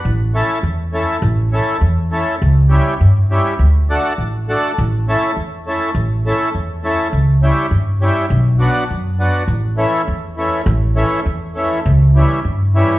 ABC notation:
X:1
M:2/4
L:1/8
Q:"Swing 16ths" 1/4=102
K:Amix
V:1 name="Accordion"
z [A,CEA] z [A,CEA] | z [A,CEA] z [A,CEA] | z [G,CEG] z [G,CEG] | z [A,DFA] z [A,DFA] |
z [A,CEA] z [A,CEA] | z [A,CEA] z [A,CEA] | z [G,CEG] z [G,CEG] | z [F,B,DF] z [F,B,DF] |
z [E,A,CE] z [E,A,CE] | z [E,A,CE] z [E,A,CE] | z [E,G,CE] z [E,G,CE] |]
V:2 name="Upright bass" clef=bass
A,,,2 E,,2 | A,,,2 E,,2 | C,,2 G,,2 | D,,2 A,,,2 |
A,,,2 E,,2 | A,,,2 E,,2 | C,,2 G,,2 | B,,,2 F,,2 |
A,,,2 E,,2 | A,,,2 E,,2 | C,,2 G,,2 |]